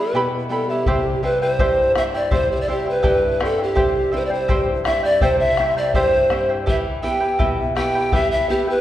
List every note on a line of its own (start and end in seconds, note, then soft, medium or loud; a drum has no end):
0.00 0.12 E2 medium
0.00 0.36 G3 soft
0.00 0.36 B3 soft
0.00 0.14 E4 soft
0.00 0.36 E4 soft
0.00 0.26 B4 medium
0.00 0.14 E5 soft
0.00 0.14 B5 soft
0.13 0.84 B2 medium
0.13 0.50 E4 medium
0.13 0.51 G4 medium
0.13 0.51 E5 medium
0.13 0.50 G5 medium
0.13 0.51 B5 medium
0.49 0.79 G3 soft
0.49 0.79 B3 soft
0.49 0.80 E4 soft
0.49 0.69 E4 medium
0.49 0.71 A4 medium
0.49 0.69 E5 medium
0.49 0.69 G5 medium
0.49 0.68 B5 medium
0.69 0.87 E4 soft
0.69 1.25 G4 medium
0.69 0.86 E5 soft
0.69 0.87 B5 soft
0.86 1.57 C3 medium
0.86 1.22 E4 medium
0.86 1.23 G4 medium
0.86 1.23 C5 medium
0.86 1.22 E5 medium
0.86 1.23 G5 medium
0.86 bombo low medium
1.23 1.81 G3 soft
1.23 1.81 C4 soft
1.23 1.42 E4 soft
1.23 1.82 E4 soft
1.23 1.41 B4 medium
1.23 1.42 C5 soft
1.23 1.41 E5 soft
1.23 1.41 G5 medium
1.42 1.58 E4 soft
1.42 1.92 C5 medium
1.42 1.59 C5 soft
1.42 1.59 G5 soft
1.59 2.30 G2 medium
1.59 1.95 E4 medium
1.59 1.96 G4 medium
1.59 1.96 C5 medium
1.59 1.95 E5 medium
1.59 1.96 G5 medium
1.59 bombo low medium
1.95 2.54 G3 soft
1.95 2.54 C4 soft
1.95 2.54 E4 soft
1.95 2.14 E4 soft
1.95 2.13 C5 medium
1.95 2.14 E5 medium
1.95 2.04 E5 medium
1.95 2.12 G5 medium
1.95 bombo rim medium
2.13 2.31 E4 soft
2.13 2.30 C5 soft
2.13 2.35 D5 medium
2.13 2.31 G5 soft
2.31 3.03 C3 medium
2.31 2.67 E4 medium
2.31 2.68 G4 medium
2.31 2.68 C5 medium
2.31 2.51 C5 medium
2.31 2.67 E5 medium
2.31 2.69 G5 medium
2.31 bombo low medium
2.52 2.62 C5 medium
2.52 2.57 D5 medium
2.61 2.69 D5 medium
2.68 3.26 G3 soft
2.68 3.26 C4 soft
2.68 3.27 E4 soft
2.68 2.86 E4 soft
2.68 2.87 G4 medium
2.68 2.86 C5 medium
2.68 2.86 E5 soft
2.68 2.84 G5 medium
2.86 3.01 E4 soft
2.86 3.46 B4 medium
2.86 3.02 C5 soft
2.86 3.02 G5 soft
3.03 3.75 G2 medium
3.03 3.39 E4 medium
3.03 3.40 G4 medium
3.03 3.39 E5 medium
3.03 3.39 G5 medium
3.03 bombo low medium
3.40 3.99 G3 soft
3.40 3.99 C4 soft
3.40 3.58 E4 medium
3.40 3.99 E4 medium
3.40 3.57 C5 medium
3.40 3.59 E5 soft
3.40 3.57 G5 medium
3.40 bombo rim soft
3.44 3.61 A4 medium
3.58 3.75 E4 soft
3.58 3.74 C5 soft
3.58 3.75 G5 soft
3.63 4.12 G4 medium
3.75 4.48 C3 medium
3.75 4.11 E4 medium
3.75 4.13 G4 medium
3.75 4.11 C5 medium
3.75 4.10 E5 medium
3.75 4.12 G5 medium
3.75 bombo low medium
4.12 4.72 G3 soft
4.12 4.72 C4 soft
4.12 4.30 E4 medium
4.12 4.72 E4 soft
4.12 4.29 C5 medium
4.12 4.31 E5 soft
4.12 4.29 G5 medium
4.16 4.21 B4 medium
4.20 4.26 C5 medium
4.26 4.35 D5 medium
4.30 4.48 E4 soft
4.30 4.48 C5 soft
4.30 4.63 C5 medium
4.30 4.48 G5 soft
4.48 5.21 G2 medium
4.48 4.84 E4 medium
4.48 4.86 G4 medium
4.48 4.84 C5 medium
4.48 4.83 E5 medium
4.48 4.84 G5 medium
4.48 bombo low medium
4.84 5.44 G3 soft
4.84 5.45 C4 soft
4.84 5.03 E4 medium
4.84 5.45 E4 soft
4.84 5.02 C5 medium
4.84 5.04 E5 medium
4.84 5.02 G5 medium
4.84 bombo rim medium
5.03 5.21 E4 soft
5.03 5.21 C5 soft
5.03 5.24 D5 medium
5.03 5.21 G5 medium
5.21 5.93 C3 medium
5.21 5.58 E4 medium
5.21 5.58 G4 medium
5.21 5.58 C5 medium
5.21 5.39 C5 medium
5.21 5.57 E5 medium
5.21 5.59 G5 medium
5.21 bombo low medium
5.40 5.74 E5 medium
5.57 6.17 G3 soft
5.57 6.17 C4 soft
5.57 5.77 E4 medium
5.57 6.17 E4 soft
5.57 5.76 C5 medium
5.57 5.77 E5 soft
5.57 5.75 G5 medium
5.57 bombo rim medium
5.77 5.94 E4 soft
5.77 5.94 C5 soft
5.77 5.96 D5 medium
5.77 5.95 G5 soft
5.94 6.65 G2 medium
5.94 6.30 E4 medium
5.94 6.31 G4 medium
5.94 6.49 C5 medium
5.94 6.31 C5 medium
5.94 6.30 E5 medium
5.94 6.31 G5 medium
5.94 bombo low medium
6.30 6.60 G3 soft
6.30 6.60 C4 soft
6.30 6.60 E4 medium
6.30 6.49 E4 soft
6.30 6.49 C5 medium
6.30 6.50 E5 medium
6.30 6.48 G5 medium
6.30 bombo rim soft
6.49 6.66 E4 soft
6.49 6.66 C5 soft
6.49 6.66 G5 soft
6.66 7.38 E3 medium
6.66 7.02 E4 medium
6.66 7.03 G4 medium
6.66 7.02 B4 medium
6.66 7.01 E5 medium
6.66 6.77 E5 medium
6.66 7.02 G5 medium
6.66 bombo low medium
7.02 7.62 B3 soft
7.02 7.21 E4 soft
7.02 7.62 E4 soft
7.02 7.62 G4 soft
7.02 7.20 B4 soft
7.02 7.21 E5 medium
7.02 7.46 G5 medium
7.02 7.19 G5 medium
7.20 7.38 E4 soft
7.20 7.38 B4 soft
7.20 7.38 G5 soft
7.39 8.11 B2 medium
7.39 7.75 E4 medium
7.39 7.76 G4 medium
7.39 7.75 B4 medium
7.39 7.74 E5 medium
7.39 7.75 G5 medium
7.39 bombo low medium
7.75 8.35 B3 soft
7.75 7.95 E4 soft
7.75 8.35 E4 soft
7.75 8.35 G4 soft
7.75 7.94 B4 medium
7.75 7.94 E5 medium
7.75 7.94 G5 medium
7.75 8.16 G5 medium
7.75 bombo rim soft
7.95 8.12 E4 soft
7.95 8.12 B4 soft
7.95 8.12 G5 soft
8.12 8.81 E3 medium
8.12 8.48 E4 medium
8.12 8.49 G4 medium
8.12 8.49 B4 medium
8.12 8.48 E5 medium
8.12 8.31 E5 medium
8.12 8.49 G5 medium
8.12 bombo low medium
8.32 8.51 E5 medium
8.49 8.81 B3 soft
8.49 8.67 E4 soft
8.49 8.81 E4 soft
8.49 8.71 G4 medium
8.49 8.81 G4 soft
8.49 8.67 B4 medium
8.49 8.67 E5 soft
8.49 8.66 G5 medium
8.67 8.81 E4 soft
8.67 8.81 B4 soft
8.67 8.81 B4 medium
8.67 8.81 G5 soft